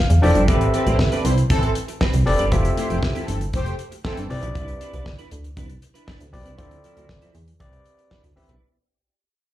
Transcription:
Already playing: F5
0.10 E2, muted clean electric guitar stroke, closed hi-hat
0.22 F1 F3 C4 D4 E4 F4 A4 C5 D5 G5, open hi-hat
0.35 G1 F3 C4 E4, closed hi-hat
0.48 A1 B3 C4 G4 A4 B4 E5, kick, closed hi-hat
0.54 C4
0.61 closed hi-hat
0.73 E3 C4 G4 A4 B4, closed hi-hat
0.86 A1 G3 C4 E4 G4 B4 C5, closed hi-hat
0.99 muted clean electric guitar stroke, kick, snare
1.11 C4 D4 G4 B4 D5, closed hi-hat
1.24 C2 G3 E4 C5, muted clean electric guitar stroke, closed hi-hat
1.37 muted clean electric guitar stroke, closed hi-hat
1.50 A1 E3 C4 A4, muted clean electric guitar stroke, kick, closed hi-hat
1.63 muted clean electric guitar stroke, closed hi-hat
1.75 closed hi-hat
1.88 muted clean electric guitar stroke, closed hi-hat
2.01 C4 G4 B4, kick, snare
2.13 C2, muted clean electric guitar stroke, closed hi-hat
2.26 F1 C4 G4 A4 B4 D5, muted clean electric guitar stroke, open hi-hat
2.39 G1 C4 G4 B4, closed hi-hat
2.51 F1 A3 C4 E4 F4 G4 A4 E5, kick, closed hi-hat
2.65 closed hi-hat
2.77 A3 E4 G4 C5, closed hi-hat
2.90 F1 A3 E4 G4 C5, closed hi-hat
3.02 muted clean electric guitar stroke, kick, snare
3.15 E3 A3 C4 E4 G4 A4, closed hi-hat
3.28 G1 E3 C4 A4, muted clean electric guitar stroke, closed hi-hat
3.40 muted clean electric guitar stroke, closed hi-hat
3.53 F1 A3 G4 C5, muted clean electric guitar stroke, kick, closed hi-hat
3.66 muted clean electric guitar stroke, closed hi-hat
3.79 closed hi-hat
3.92 muted clean electric guitar stroke, closed hi-hat
4.04 E3 A3 C4 E4 G4 A4, kick, snare
4.17 G1, muted clean electric guitar stroke, closed hi-hat
4.30 C2 C4 E4 G4 B4 D5, muted clean electric guitar stroke, open hi-hat
4.42 B1 D4 E4 B4, closed hi-hat
4.55 C2 D4 E4 B4, kick, closed hi-hat
4.68 closed hi-hat
4.80 D4 E4 B4, closed hi-hat
4.93 C2 D4 E4 B4, closed hi-hat
5.06 muted clean electric guitar stroke, kick, snare
5.18 D4 E4 B4, closed hi-hat
5.31 D2, muted clean electric guitar stroke, closed hi-hat
5.44 muted clean electric guitar stroke, closed hi-hat
5.57 C2 D4 E4 B4, kick, closed hi-hat
5.69 muted clean electric guitar stroke, closed hi-hat
5.82 muted clean electric guitar stroke, closed hi-hat
5.94 D4 E4 B4, closed hi-hat
6.07 D4 E4 B4, kick, snare
6.20 D2, muted clean electric guitar stroke, closed hi-hat
6.33 B1 C4 E4 G4 B4 D5, muted clean electric guitar stroke, open hi-hat
6.45 C2 D4 E4 B4, closed hi-hat
6.58 D2 F3 C4 E4 F4 A4 D5, kick, closed hi-hat
6.71 closed hi-hat
6.84 F3 C4 E4, closed hi-hat
6.96 D2 F3 C4 E4, closed hi-hat
7.09 muted clean electric guitar stroke, kick, snare
7.22 F3 C4 E4, closed hi-hat
7.35 E2, muted clean electric guitar stroke, closed hi-hat
7.47 muted clean electric guitar stroke, closed hi-hat
7.60 C2 C4 E4 G4 B4 D5, muted clean electric guitar stroke, kick, closed hi-hat
7.73 muted clean electric guitar stroke, closed hi-hat
7.86 closed hi-hat
7.98 muted clean electric guitar stroke, closed hi-hat
8.11 D4 E4 B4, kick, snare
8.24 D2, muted clean electric guitar stroke, closed hi-hat
8.36 A1 C4 E4 G4 B4 E5, muted clean electric guitar stroke, open hi-hat
8.49 B1 D4 E4 B4, closed hi-hat

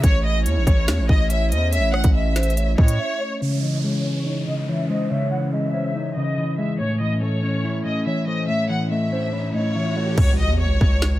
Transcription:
Already playing: E4
0.04 A1 A3 C#4 C#5, kick, closed hi-hat
0.25 D#5
0.46 E2 C#5, closed hi-hat
0.56 A1
0.67 A1, kick, closed hi-hat
0.88 E2, snare, closed hi-hat
0.99 A1
1.09 A1 D#5, kick
1.30 C#5 E5, closed hi-hat
1.51 E2 C5 D#5, closed hi-hat
1.73 C#5 E5, closed hi-hat
1.78 A1
1.94 F#5, cross-stick
2.04 A1, kick, closed hi-hat
2.15 D#5 E5
2.36 C5, snare, closed hi-hat
2.43 closed hi-hat
2.50 closed hi-hat
2.57 C#5, closed hi-hat
2.78 A2 C#5 D#5, kick
2.88 closed hi-hat
2.99 E5
3.21 C#5
3.41 C#3 E3 G#3 C#4 C#5, downlifter
3.63 E3 D#5
3.84 G#3 C#5
4.05 C#4
4.26 D#4
4.47 C#3 D#5
4.68 E3 C#5 E5
4.89 G#3 C5 D#5
5.11 C#3 C#5 E5
5.32 E3 F#5
5.53 G#3 D#5 E5
5.74 C#4 C5
5.95 D#4 C#5
6.16 C#3 D#5
6.37 E3
6.58 G#3 E5
6.80 A2 A3 C#4 C#5, riser
7.01 E3 D#5
7.22 A3 C#5
7.43 C#4
7.64 E4
7.85 A2 D#5
8.06 E3 C#5 E5
8.27 A3 C5 D#5
8.49 A2 C#5 E5
8.70 E3 F#5
8.91 A3 D#5 E5
9.12 C#4 C5
9.33 E4 C#5
9.54 A2 C#5 D#5
9.75 E3 E5
9.96 A3 C#5
10.17 C#2 C#5, kick, crash, impact
10.39 D#5
10.49 E2
10.60 C#5
10.65 C#2
10.81 C#2, kick
11.02 snare

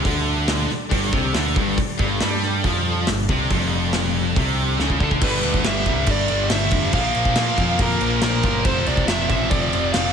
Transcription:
Already playing: G3 D4 A4
0.05 D2 D3, kick, open hi-hat
0.48 snare, open hi-hat
0.70 muted distorted electric guitar stroke, muted picked electric bass stroke, snare
0.90 G1 G2, kick, open hi-hat
1.13 C2 C3, kick
1.34 D2 D3, snare, open hi-hat
1.56 G1 G2, kick
1.78 kick, open hi-hat
1.99 G1 G2, kick
2.20 G2 G3, snare, open hi-hat
2.42 snare
2.64 F2 F3, kick, open hi-hat
3.07 G1 G2, snare, open hi-hat
3.29 C2 C3, kick
3.50 F1 F2, kick, open hi-hat
3.93 snare, open hi-hat
4.36 C2 C3, kick, open hi-hat
4.79 C#2 C#3, snare
4.90 kick
5.00 D2 D3 A4, kick
5.11 kick
5.21 G1 G2 D3 G3 B4, kick, crash
5.43 D2 G2 D3 G3, crash
5.54 kick
5.64 G1 G2 D3 G3 E5, snare, crash
5.86 C2 G2 D3 G3, kick, crash
6.06 G1 G2 D3 G3, kick, crash
6.11 D5
6.28 G1 G2 D3 G3, crash
6.50 G1 G2 D3 G3 E5, snare, crash
6.71 F1 G2 D3 G3, kick, crash
6.93 A#1 A#2 F3 A#3 F5, kick, crash
7.15 A#1 A#2 F3 A#3, crash
7.25 kick
7.36 A#2 F3 A#3, snare, crash
7.57 F2 A#2 F3 A#3, kick, crash
7.79 F2 A#2 F3 A#3 A#4, kick, crash
8.01 A#1 A#2 F3 A#3, crash
8.22 A#1 A#2 F3 A#3 A#4, snare, crash
8.43 G1 A#2 F3 A#3 A#4, kick, crash
8.65 F1 F2 C3 F3 C5, kick, crash
8.86 C2 F2 C3 F3 D5, crash
8.97 kick
9.07 F1 F2 C3 F3 E5, snare, crash
9.29 A1 F2 C3 F3 E5, kick, crash
9.50 F1 F2 C3 F3 D5, kick, crash
9.73 F1 F2 C3 F3, crash
9.93 F1 F2 C3 F3 F5, snare, crash

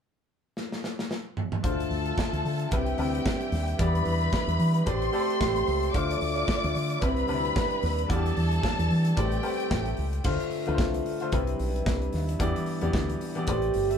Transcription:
0.57 snare
0.72 snare
0.84 snare
0.99 snare
1.11 snare
1.37 mid tom
1.52 mid tom
1.63 D2 D3 A3 C4 D4 F4 A4 C5 E5 A5, kick, closed hi-hat
1.80 closed hi-hat
1.90 D2, open hi-hat
2.06 closed hi-hat
2.18 kick, snare
2.33 D2, closed hi-hat
2.45 D3, open hi-hat
2.59 closed hi-hat
2.71 C2 C3 G3 C4 D4 E4 G4 B4 G5, kick, closed hi-hat
2.86 closed hi-hat
2.98 D2 C3 C4 E4 B4, open hi-hat
3.15 closed hi-hat
3.26 kick, snare
3.41 closed hi-hat
3.52 D#2, snare, open hi-hat
3.68 closed hi-hat
3.79 E2 E3 B3 G4 B4 D5 B5, kick, closed hi-hat
3.95 closed hi-hat
4.05 E2, open hi-hat
4.21 closed hi-hat
4.33 kick, snare
4.47 E2, closed hi-hat
4.59 E3, open hi-hat
4.74 closed hi-hat
4.85 A1 A3 C4 G4 B4 C5 D5 C6, kick, closed hi-hat
5.02 closed hi-hat
5.12 A3 G4 A4 C5 D5, open hi-hat
5.30 closed hi-hat
5.41 A1, kick, snare
5.56 closed hi-hat
5.67 C#2, open hi-hat
5.83 closed hi-hat
5.94 D2 D3 A3 C4 F4 C5 D5 E5 D6, kick, closed hi-hat
6.11 closed hi-hat
6.21 D2, open hi-hat
6.36 closed hi-hat
6.48 kick, snare
6.64 D2, closed hi-hat
6.75 D3, open hi-hat
6.90 closed hi-hat
7.01 C2 C3 G3 C4 D4 E4 B4 B5, kick, closed hi-hat
7.17 closed hi-hat
7.27 D2 C3 C4 D4 B4, open hi-hat
7.35 E4
7.45 closed hi-hat
7.56 kick, snare
7.71 closed hi-hat
7.82 D#2, snare, open hi-hat
7.98 closed hi-hat
8.08 E2 E3 B3 F4 A4 D5 A5, kick, closed hi-hat
8.16 G4
8.26 closed hi-hat
8.37 E2, open hi-hat
8.51 closed hi-hat
8.63 kick, snare
8.79 E2, closed hi-hat
8.90 E3, open hi-hat
9.05 closed hi-hat
9.16 A1 A3 C4 G4 B4 C5 D5 G5, kick, closed hi-hat
9.32 closed hi-hat
9.43 A3 G4 B4 C5 D5, open hi-hat
9.60 closed hi-hat
9.71 A1, kick, snare
9.86 closed hi-hat
9.97 C#2, open hi-hat
10.13 closed hi-hat
10.24 D2 D3 A3 C4 F4 C5 E5, kick, crash
10.40 closed hi-hat
10.50 open hi-hat
10.66 D2 D3 A3 F4 B4, closed hi-hat
10.74 C5
10.78 C2, kick, snare
10.94 closed hi-hat
11.06 open hi-hat
11.20 D3 A3 F4 C5, closed hi-hat
11.31 C2 C3 G3 C4 D4 E4 B4, kick, closed hi-hat
11.47 closed hi-hat
11.59 B1, open hi-hat
11.76 closed hi-hat
11.86 C2, kick, snare
12.02 closed hi-hat
12.13 D#2, snare, open hi-hat
12.29 closed hi-hat
12.39 E2 E3 B3 G4 D5, kick, closed hi-hat
12.56 closed hi-hat
12.66 open hi-hat
12.81 E2 E3 B3 G4 D5, closed hi-hat
12.93 D2, kick, snare
13.09 closed hi-hat
13.21 open hi-hat
13.35 E3 B3 G4 D5, closed hi-hat
13.47 A1 A3 C4 G4 B4 C5 D5, kick, closed hi-hat
13.62 closed hi-hat
13.74 G1, open hi-hat
13.90 G4 E5, closed hi-hat

